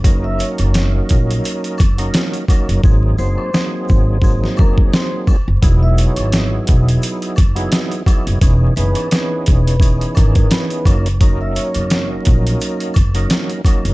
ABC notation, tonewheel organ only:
X:1
M:4/4
L:1/16
Q:"Swing 16ths" 1/4=86
K:D#phr
V:1 name="Tonewheel organ"
[F,A,CDA]8- [F,A,CDA]2 z [F,A,CDA]3 [F,A,CDA]2 | [F,A,^B,DG]2 [F,A,B,DG]2 [F,A,B,DG]4 [F,A,B,DG]6 z2 | [F,B,DEG]8- [F,B,DEG]2 z [F,B,DEG]3 [F,B,DEG]2 | [E,B,CDG]2 [E,B,CDG]2 [E,B,CDG]4 [E,B,CDG]6 [F,A,CDA] z |
[F,A,CDA]8- [F,A,CDA]2 z [F,A,CDA]3 [F,A,CDA]2 |]